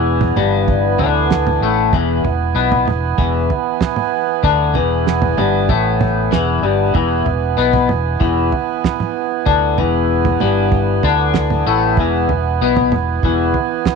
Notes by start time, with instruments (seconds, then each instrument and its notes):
Already playing: fingered electric bass E1, clean electric guitar E2 E3, harmonium E3 B3 B4 G#5
0.21 floor tom, mid tom
0.36 fingered electric bass G1, clean electric guitar G2 G3, mid tom
0.68 kick, floor tom
0.99 fingered electric bass D2, clean electric guitar D3 D4, floor tom
1.31 snare, floor tom
1.47 mid tom
1.61 fingered electric bass A1, clean electric guitar A2 A3
1.93 fingered electric bass E1, clean electric guitar E2 E3, kick, floor tom
2.23 fingered electric bass E1, clean electric guitar E2, floor tom
2.54 fingered electric bass B1, clean electric guitar B2 B3
2.72 floor tom, mid tom
2.86 fingered electric bass E1, clean electric guitar E2, mid tom
3.18 fingered electric bass E1, clean electric guitar E2 E3, kick, floor tom
3.50 floor tom
3.81 snare, floor tom
3.96 mid tom
4.43 fingered electric bass D2, clean electric guitar D3 D4, kick, floor tom
4.74 fingered electric bass E1, clean electric guitar E2 E3, floor tom
5.07 snare
5.22 floor tom, mid tom
5.38 fingered electric bass G1, clean electric guitar G2 G3, mid tom
5.69 fingered electric bass A1, clean electric guitar A2 A3, kick, floor tom
6.01 floor tom, mid tom
6.31 fingered electric bass E1, clean electric guitar E2 E3, snare, floor tom
6.62 fingered electric bass G1, clean electric guitar G2 G3
6.94 fingered electric bass E1, clean electric guitar E2 E3, kick, floor tom
7.26 fingered electric bass E1, clean electric guitar E2, floor tom
7.57 fingered electric bass B1, clean electric guitar B2 B3
7.73 floor tom, mid tom
7.89 fingered electric bass E1, clean electric guitar E2, mid tom
8.20 fingered electric bass E1, clean electric guitar E2 E3, kick, floor tom
8.52 floor tom
8.84 snare, floor tom
9.00 mid tom
9.46 fingered electric bass D2, clean electric guitar D3 D4, kick, floor tom
9.78 fingered electric bass E1, clean electric guitar E2 E3, floor tom
10.25 floor tom, mid tom
10.40 fingered electric bass G1, clean electric guitar G2 G3, mid tom
10.72 kick, floor tom
11.03 fingered electric bass D2, clean electric guitar D3 D4, floor tom
11.34 snare, floor tom
11.50 mid tom
11.67 fingered electric bass A1, clean electric guitar A2 A3
11.97 fingered electric bass E1, clean electric guitar E2 E3, kick, floor tom
12.29 fingered electric bass E1, clean electric guitar E2, floor tom
12.61 fingered electric bass B1, clean electric guitar B2 B3
12.77 floor tom, mid tom
12.92 fingered electric bass E1, clean electric guitar E2, mid tom
13.23 fingered electric bass E1, clean electric guitar E2 E3, kick, floor tom
13.54 floor tom
13.85 snare, floor tom